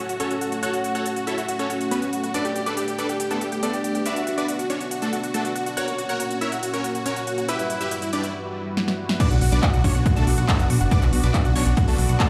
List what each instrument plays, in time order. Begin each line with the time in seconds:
0.09 supersaw synth F#4, synth pluck F#5, closed hi-hat
0.20 supersaw synth C#4 F#4 A4 C#5, grand piano A4, synth pluck C#6, closed hi-hat
0.31 supersaw synth F#4, synth pluck F#5, closed hi-hat
0.41 supersaw synth F#4, synth pluck F#5, closed hi-hat
0.52 supersaw synth F#4, synth pluck F#5, closed hi-hat
0.63 supersaw synth F#4 A4 C#5 F#5, grand piano F#4, synth pluck F#6, closed hi-hat
0.73 supersaw synth F#4, synth pluck F#5, closed hi-hat
0.84 supersaw synth F#4, synth pluck F#5, closed hi-hat
0.95 supersaw synth F#4 A4 C#5 F#5, synth pluck F#6, closed hi-hat
1.06 supersaw synth F#4, synth pluck F#5, closed hi-hat
1.16 supersaw synth F#4, synth pluck F#5, closed hi-hat
1.27 supersaw synth E4 A4 C#5 E5, synth pluck E6, closed hi-hat
1.38 supersaw synth F#4, synth pluck F#5, closed hi-hat
1.49 supersaw synth F#4, synth pluck F#5, closed hi-hat
1.59 supersaw synth C#4 F#4 A4 C#5, synth pluck C#6, closed hi-hat
1.70 supersaw synth F#4, synth pluck F#5, closed hi-hat
1.81 supersaw synth F#4, synth pluck F#5, closed hi-hat
1.91 supersaw synth B3 C#4 F#4 B4, synth pluck B5, closed hi-hat
2.02 supersaw synth F#4, synth pluck F#5, closed hi-hat
2.13 supersaw synth F#4, synth pluck F#5, closed hi-hat
2.24 supersaw synth F#4, synth pluck F#5, closed hi-hat
2.34 supersaw synth D4 A4 B4 D5, grand piano D5, synth pluck D6, closed hi-hat
2.45 supersaw synth G4, synth pluck G5, closed hi-hat
2.56 supersaw synth G4, synth pluck G5, closed hi-hat
2.66 supersaw synth D4 A4 B4 D5, synth pluck D6, closed hi-hat
2.77 supersaw synth G4, synth pluck G5, closed hi-hat
2.88 supersaw synth G4, synth pluck G5, closed hi-hat
2.99 supersaw synth D4 A4 B4 D5, synth pluck D6, closed hi-hat
3.09 supersaw synth G4, synth pluck G5, closed hi-hat
3.20 supersaw synth G4, synth pluck G5, closed hi-hat
3.31 supersaw synth A3 B3 D4 A4, synth pluck A5, closed hi-hat
3.41 supersaw synth G4, synth pluck G5, closed hi-hat
3.52 supersaw synth G4, synth pluck G5, closed hi-hat
3.63 supersaw synth A3 B3 D4 A4, grand piano D5, synth pluck A5, closed hi-hat
3.73 supersaw synth G4, synth pluck G5, closed hi-hat
3.84 supersaw synth G4, synth pluck G5, closed hi-hat
3.95 supersaw synth G4, synth pluck G5, closed hi-hat
4.06 supersaw synth D4 F#4 B4 D5, grand piano E5, synth pluck D6, closed hi-hat
4.16 supersaw synth F#4, synth pluck F#5, closed hi-hat
4.27 supersaw synth F#4, synth pluck F#5, closed hi-hat
4.38 supersaw synth D4 F#4 B4 D5, synth pluck D6, closed hi-hat
4.48 supersaw synth F#4, synth pluck F#5, closed hi-hat
4.59 supersaw synth F#4, synth pluck F#5, closed hi-hat
4.70 supersaw synth C#4 D4 F#4 C#5, synth pluck C#6, closed hi-hat
4.81 supersaw synth F#4, synth pluck F#5, closed hi-hat
4.91 supersaw synth F#4, synth pluck F#5, closed hi-hat
5.02 supersaw synth A3 D4 F#4 A4, synth pluck A5, closed hi-hat
5.13 supersaw synth F#4, synth pluck F#5, closed hi-hat
5.23 supersaw synth F#4, synth pluck F#5, closed hi-hat
5.34 supersaw synth A3 D4 F#4 A4, synth pluck A5, closed hi-hat
5.45 supersaw synth F#4, synth pluck F#5, closed hi-hat
5.56 supersaw synth F#4, synth pluck F#5, closed hi-hat
5.66 supersaw synth F#4, synth pluck F#5, closed hi-hat
5.77 supersaw synth F#4 A#4 C#5 F#5, grand piano C#5, synth pluck F#6, closed hi-hat
5.88 supersaw synth F#4, synth pluck F#5, closed hi-hat
5.98 supersaw synth F#4, synth pluck F#5, closed hi-hat
6.09 supersaw synth F#4 A#4 C#5 F#5, synth pluck F#6, closed hi-hat
6.20 supersaw synth F#4, synth pluck F#5, closed hi-hat
6.31 supersaw synth F#4, synth pluck F#5, closed hi-hat
6.41 supersaw synth E4 A#4 C#5 E5, synth pluck E6, closed hi-hat
6.52 supersaw synth F#4, synth pluck F#5, closed hi-hat
6.63 supersaw synth F#4, synth pluck F#5, closed hi-hat
6.74 supersaw synth C#4 F#4 A#4 C#5, synth pluck C#6, closed hi-hat
6.84 supersaw synth F#4, synth pluck F#5, closed hi-hat
6.95 supersaw synth F#4, synth pluck F#5, closed hi-hat
7.06 supersaw synth C#4 F#4 A#4 C#5, grand piano C#5, synth pluck C#6, closed hi-hat
7.16 supersaw synth F#4, synth pluck F#5, closed hi-hat
7.27 supersaw synth F#4, synth pluck F#5, closed hi-hat
7.38 supersaw synth F#4, synth pluck F#5, closed hi-hat
7.49 supersaw synth E4 G4 B4 E5, grand piano B4, synth pluck E6, closed hi-hat
7.59 supersaw synth E4, synth pluck E5, closed hi-hat
7.70 supersaw synth E4, synth pluck E5, closed hi-hat
7.81 supersaw synth E4 G4 B4 E5, synth pluck E6, closed hi-hat
7.91 supersaw synth E4, synth pluck E5, closed hi-hat
8.02 supersaw synth E4, synth pluck E5, closed hi-hat
8.13 supersaw synth D4 G4 B4 D5, synth pluck D6, closed hi-hat
8.24 supersaw synth E4, synth pluck E5, closed hi-hat
8.77 snare
8.88 snare
9.09 snare
9.20 supersaw synth D4 F#4 B4 D5, synth pluck D6, kick, closed hi-hat, crash
9.31 analog synth bass B1, supersaw synth F#4, synth pluck F#5, closed hi-hat
9.41 analog synth bass B1, supersaw synth F#4, synth pluck F#5, open hi-hat
9.52 analog synth bass B1, supersaw synth D4 F#4 B4 D5, synth pluck D6, closed hi-hat
9.63 supersaw synth F#4, synth pluck F#5, kick, clap, closed hi-hat
9.74 analog synth bass B1, supersaw synth F#4, synth pluck F#5, closed hi-hat
9.84 analog synth bass B1, supersaw synth C#4 D4 F#4 C#5, synth pluck C#6, kick, open hi-hat
9.95 analog synth bass B1, supersaw synth F#4, synth pluck F#5, closed hi-hat
10.06 supersaw synth F#4, synth pluck F#5, kick, closed hi-hat
10.16 analog synth bass B1, supersaw synth A3 D4 F#4 A4, synth pluck A5, closed hi-hat
10.27 analog synth bass B1, supersaw synth F#4, synth pluck F#5, open hi-hat
10.38 analog synth bass B1, supersaw synth F#4, synth pluck F#5, closed hi-hat
10.48 supersaw synth A3 D4 F#4 A4, synth pluck A5, kick, clap, closed hi-hat
10.59 analog synth bass F#1, supersaw synth F#4, synth pluck F#5, closed hi-hat
10.70 analog synth bass B1, supersaw synth F#4, synth pluck F#5, open hi-hat
10.81 analog synth bass F#1, supersaw synth F#4, synth pluck F#5, closed hi-hat
10.91 supersaw synth D4 F#4 B4 D5, synth pluck D6, kick, closed hi-hat
11.02 analog synth bass B1, supersaw synth F#4, synth pluck F#5, clap, closed hi-hat
11.13 analog synth bass B1, supersaw synth F#4, synth pluck F#5, open hi-hat
11.23 analog synth bass B1, supersaw synth D4 F#4 B4 D5, synth pluck D6, closed hi-hat
11.34 supersaw synth F#4, synth pluck F#5, kick, clap, closed hi-hat
11.45 analog synth bass B1, supersaw synth F#4, synth pluck F#5, closed hi-hat
11.56 analog synth bass B1, supersaw synth C#4 D4 F#4 C#5, synth pluck C#6, open hi-hat
11.66 analog synth bass B1, supersaw synth F#4, synth pluck F#5, closed hi-hat
11.77 supersaw synth F#4, synth pluck F#5, kick, closed hi-hat
11.88 analog synth bass B1, supersaw synth A3 D4 F#4 A4, synth pluck A5, open hi-hat
11.98 analog synth bass B1, supersaw synth F#4, synth pluck F#5, open hi-hat
12.09 analog synth bass B1, supersaw synth F#4, synth pluck F#5, closed hi-hat
12.20 supersaw synth A3 D4 F#4 A4, synth pluck A5, kick, clap, closed hi-hat